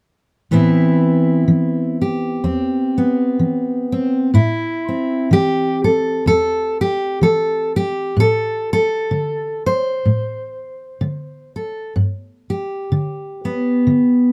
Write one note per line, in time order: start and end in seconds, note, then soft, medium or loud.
0.51 1.39 A2 medium
0.51 1.47 E3 medium
0.51 2.97 B3 medium
0.51 2.43 C4 soft
0.51 2.01 E4 medium
1.48 2.35 E3 medium
2.01 4.30 G4 soft
2.44 3.31 E2 soft
2.44 3.91 C4 soft
2.98 4.30 B3 soft
3.39 4.26 E3 medium
3.92 4.30 C4 medium
4.34 5.21 A2 medium
4.34 5.30 E4 medium
4.89 8.11 C4 soft
5.31 6.17 E3 medium
5.31 5.84 G4 medium
5.84 6.26 A4 medium
6.26 7.12 E2 medium
6.26 6.79 A4 medium
6.81 7.22 G4 medium
7.21 8.08 E3 medium
7.21 7.74 A4 medium
7.76 8.17 G4 medium
8.17 9.03 A2 medium
8.17 8.71 A4 medium
8.73 9.66 A4 medium
9.11 9.98 D3 medium
9.66 11.55 C5 medium
10.05 10.93 A2 medium
11.01 11.88 D3 medium
11.56 11.92 A4 soft
11.96 12.83 G2 medium
12.50 14.32 G4 medium
12.92 13.79 D3 medium
13.45 14.32 B3 medium
13.87 14.32 D3 medium